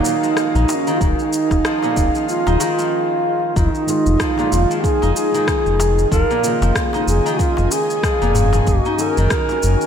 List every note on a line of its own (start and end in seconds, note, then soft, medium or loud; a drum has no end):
0.00 0.10 A#2 medium
0.00 0.10 F#3 medium
0.00 2.93 G#3 medium
0.00 0.55 D#4 medium
0.00 0.70 D#4 loud
0.00 0.97 D#4 medium
0.00 0.98 F#4 medium
0.00 2.93 G#4 medium
0.00 0.98 A#4 medium
0.00 0.98 F5 medium
0.05 0.86 D#3 medium
0.05 shaker medium
0.23 0.90 F3 medium
0.23 shaker soft
0.37 cross-stick medium
0.37 shaker soft
0.55 0.65 A#1 medium
0.55 2.46 D#4 loud
0.55 shaker soft
0.69 0.75 D#4 medium
0.69 darbuka tek medium
0.69 shaker medium
0.74 0.94 C#4 medium
0.87 1.00 D#3 medium
0.87 shaker soft
0.94 1.03 F4 medium
1.00 1.15 D#1 medium
1.00 1.86 D#3 medium
1.00 2.90 C#4 medium
1.00 2.29 D#4 loud
1.00 2.91 G#4 medium
1.00 2.90 D#5 medium
1.00 2.90 F5 medium
1.00 kick loud
1.00 shaker soft
1.19 shaker soft
1.33 shaker medium
1.51 1.61 D#1 loud
1.51 kick medium
1.51 cross-stick soft
1.51 darbuka tek medium
1.51 shaker soft
1.65 2.02 F3 loud
1.65 cross-stick loud
1.65 shaker soft
1.83 2.02 A#2 loud
1.83 darbuka ka medium
1.83 shaker soft
1.97 2.10 D#1 medium
1.97 2.59 D#3 medium
1.97 kick loud
1.97 shaker medium
2.15 2.66 F3 medium
2.15 shaker soft
2.29 2.59 F4 medium
2.29 shaker soft
2.47 2.57 D#1 loud
2.47 5.02 D#4 loud
2.47 darbuka tek medium
2.47 shaker soft
2.60 3.55 D#3 loud
2.60 2.65 F#4 loud
2.60 darbuka ka medium
2.60 darbuka tek medium
2.60 shaker medium
2.64 3.58 F4 loud
2.78 3.62 F3 medium
2.78 shaker soft
3.56 3.70 F1 loud
3.56 4.41 D#3 medium
3.56 6.09 D#4 medium
3.56 4.54 D#4 loud
3.56 6.09 F4 medium
3.56 6.09 G#4 medium
3.56 kick loud
3.56 shaker soft
3.75 shaker soft
3.87 4.16 D#3 medium
3.87 4.17 G#3 medium
3.87 4.17 F4 medium
3.87 shaker medium
4.06 4.16 F1 loud
4.06 shaker soft
4.20 4.57 F3 medium
4.20 4.35 F4 medium
4.20 kick loud
4.20 cross-stick loud
4.20 shaker soft
4.36 4.57 A#2 loud
4.36 5.29 D#3 medium
4.36 5.30 G#3 medium
4.36 darbuka ka medium
4.36 shaker soft
4.40 5.31 F4 loud
4.52 4.66 F1 medium
4.52 5.33 D#3 medium
4.52 4.85 F4 loud
4.52 shaker medium
4.70 5.37 F3 medium
4.70 shaker soft
4.83 5.15 G#4 loud
4.83 kick loud
4.83 shaker soft
5.02 5.12 F1 loud
5.02 6.94 D#4 loud
5.02 darbuka ka medium
5.02 shaker soft
5.15 6.07 G#4 loud
5.15 shaker medium
5.32 6.09 D#3 medium
5.32 5.47 D#3 loud
5.32 6.10 G#3 medium
5.32 6.11 F4 medium
5.32 shaker soft
5.48 6.17 D#3 medium
5.48 kick loud
5.48 cross-stick loud
5.48 shaker soft
5.66 6.06 F1 medium
5.66 shaker soft
5.80 darbuka tek medium
5.80 shaker medium
5.99 shaker soft
6.11 6.25 F1 loud
6.11 6.49 F3 loud
6.11 8.65 C#4 medium
6.11 8.65 G#4 medium
6.11 6.77 A#4 loud
6.11 8.65 D#5 medium
6.11 9.87 G#5 loud
6.11 kick loud
6.11 shaker soft
6.30 6.49 A#2 loud
6.30 shaker soft
6.42 6.72 C#3 medium
6.42 7.24 D#3 medium
6.42 6.72 A#3 medium
6.42 6.73 F4 medium
6.42 shaker medium
6.61 6.72 F1 loud
6.61 7.29 F3 medium
6.61 darbuka tek medium
6.61 shaker soft
6.75 6.90 C#3 medium
6.75 6.91 A#3 medium
6.75 6.92 F4 medium
6.75 kick loud
6.75 cross-stick loud
6.75 shaker soft
6.92 8.64 C#3 medium
6.92 8.65 A#3 medium
6.92 8.85 D#4 loud
6.92 8.66 F4 medium
6.92 darbuka ka medium
6.92 shaker soft
7.07 7.21 F1 medium
7.07 7.41 G#4 loud
7.07 shaker medium
7.26 7.38 D#3 loud
7.26 shaker soft
7.39 8.24 D#3 medium
7.39 7.73 F4 loud
7.39 kick loud
7.39 shaker soft
7.57 7.68 F1 loud
7.57 darbuka tek medium
7.57 shaker soft
7.71 8.70 G#4 loud
7.71 darbuka ka medium
7.71 shaker medium
7.90 shaker soft
8.03 8.40 F3 medium
8.03 kick loud
8.03 cross-stick medium
8.03 shaker soft
8.22 8.61 F1 medium
8.22 8.40 A#2 loud
8.22 shaker soft
8.35 8.72 D#3 medium
8.35 darbuka dum medium
8.35 shaker medium
8.53 8.72 F3 medium
8.53 darbuka tek medium
8.53 shaker soft
8.67 8.81 F#1 loud
8.67 9.87 D#4 medium
8.67 9.87 F#4 medium
8.67 9.01 F#4 loud
8.67 9.87 A#4 medium
8.67 kick loud
8.67 shaker soft
8.85 9.87 D#4 loud
8.85 shaker soft
8.98 9.27 D#3 medium
8.98 9.28 C#4 medium
8.98 9.28 F#4 loud
8.98 9.87 A#4 loud
8.98 shaker medium
9.17 9.27 F#1 loud
9.17 9.31 D#3 loud
9.17 shaker soft
9.30 9.45 D#3 medium
9.30 9.87 D#3 medium
9.30 9.45 C#4 medium
9.30 9.46 F#4 medium
9.30 kick loud
9.30 cross-stick loud
9.30 shaker soft
9.48 9.87 D#3 loud
9.48 9.87 C#4 medium
9.48 darbuka ka medium
9.48 shaker soft
9.52 9.87 F#4 loud
9.63 9.76 F#1 loud
9.63 shaker medium
9.81 shaker soft